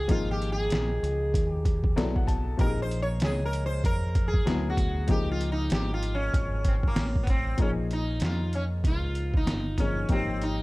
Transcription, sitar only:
Already playing: G#4
0.11 F4
0.31 G4
0.52 G#4
1.50 G4
2.61 A#4
2.82 C5
3.02 C#5
3.24 G#4
3.45 A#4
3.66 C5
3.86 A#4
4.28 G#4
4.70 F#4
5.11 G4
5.32 F4
5.52 D#4
5.73 G4
5.94 F4
6.15 C#4
6.68 C4
6.88 A#3
7.23 B3
7.30 C4
7.62 C#4
7.93 D#4
8.25 F4
8.55 C#4
8.87 F4
9.37 D#4
9.80 C#4
10.12 C4
10.43 D#4

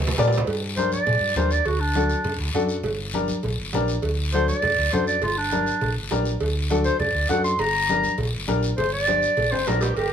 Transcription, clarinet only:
0.77 C5
0.93 D5
1.37 C5
1.52 D5
1.66 F#4
1.80 D4
4.33 C5
4.48 D5
4.93 C5
5.07 D5
5.23 F4
5.38 D4
6.85 C5
6.99 D5
7.29 F#5
7.44 C6
7.60 A#5
8.77 C5
8.93 D5
9.52 C5
9.67 A#4
9.81 G4
9.96 A#4

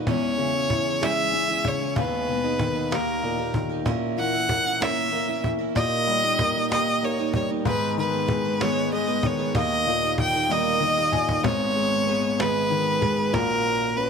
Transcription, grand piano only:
0.06 E2
0.38 C#3
0.70 E3
1.02 G#3
1.33 E3
1.65 C#3
1.97 D#2
2.29 B2
2.60 D#3
2.92 D#2
3.23 A#2
3.54 D#3
3.86 A#2
4.18 E3
4.49 A#3
4.81 C#4
5.13 A#3
5.44 E3
5.75 A#2
6.07 G3
6.39 A#3
6.71 G4
7.03 A#3
7.33 G3
7.66 G#2
7.98 D#3
8.29 G#3
8.60 B3
8.93 G#3
9.23 D#3
9.55 D#2
9.86 A#2
10.18 D#3
10.49 G3
10.80 D#3 D#5
11.12 A#2 G#5
11.44 G#1 G#2
11.76 G#3
12.06 B3
12.38 G#3
12.70 D#3
13.01 G#3
13.33 A#1 A#2
13.96 C#4

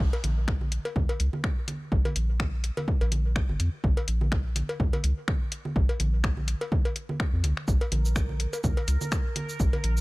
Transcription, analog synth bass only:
0.24 A#1
0.96 D#2
1.20 C#2
1.92 A#1
2.16 A#1
3.01 A#1
3.49 G#1
3.60 F2
3.84 A#1
4.08 A#1
4.80 D#2
5.04 C#2
5.76 A#1
6.00 A#1
7.33 F2
7.44 C#2
7.68 A#1
7.92 A#1
8.64 D#2
8.88 C#2
9.60 A#1
9.84 A#1

